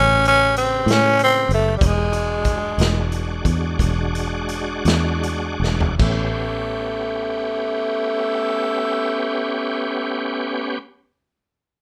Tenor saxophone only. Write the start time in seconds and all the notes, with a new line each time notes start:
Already playing: C#4
0.28 C#4
0.58 C4
0.92 C#4
1.24 C4
1.54 A3
1.77 G3
1.86 G#3
6.02 A3